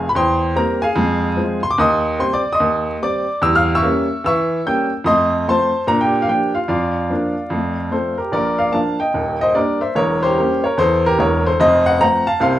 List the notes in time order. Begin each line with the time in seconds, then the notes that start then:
0.09 B5
0.15 E2 C5 G5 C6
0.55 G3 A#3 C4 A#4 A#5
0.82 G#4 F5 G#5
0.96 F2 G#3
1.36 F3 G#3 C4
1.63 C6
1.70 D6
1.78 D#2 D#5 C6 D#6
2.19 G3 C4 C6
2.33 D5 D6
2.53 D#5 C6 D#6
2.60 D#2
3.02 G3 C4 D5 D6
3.41 E2 G3 E6
3.55 F5 F6
3.75 E5 C#6 E6
3.82 G3 A#3 C#4
4.24 E3 E5 C#6 E6
4.66 G3 A#3 C#4 G5 G6
5.04 F2 A3 D#5 C6 D#6
5.48 F3 A3 C4 C5 A5 C6
5.87 A#2 D4 A#5
6.01 G4 G5
6.22 F5
6.28 F3 A#3 D4 G4 G5
6.55 F4 F5
6.68 F2 F4 D5 F5
7.10 F3 A#3 D4
7.50 F2 A3
7.91 F3 A3 C4 A4 C5
8.18 G4 A#4
8.32 A#1 A#2 A#4 D5
8.58 D5 F5
8.72 F3 A#3 D4 F5 A5
9.00 D#5 G5
9.14 D#1 D#2
9.41 C5 D#5
9.54 G3 A#3 D4 A#4 D5
9.81 C5 E5
9.95 E1 E2 A#4 C#5
10.23 G4 C5
10.38 G3 A#3 C#4
10.64 A#4 C#5
10.77 E2 E3 A4 C5
11.06 G4 A#4
11.18 E1 E2 A#4 C#5
11.46 A4 C5
11.60 F1 F2 C5 D#5
11.86 D#5 F#5
12.00 F3 A3 C4 F#5 A#5
12.27 F5 A5
12.40 C2 C3 C5 F5